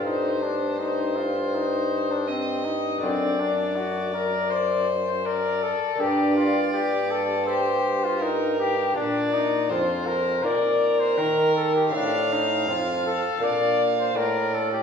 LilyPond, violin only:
\new Staff \with { instrumentName = "Violin" } { \time 4/4 \key g \minor \tempo 4 = 81 c''4 c''2 ees''4 | d''2 c''4 d''4 | d''2 c''4 bes'4 | \key bes \major d''4 c''4 bes'2 |
f''2 f''4 d''4 | }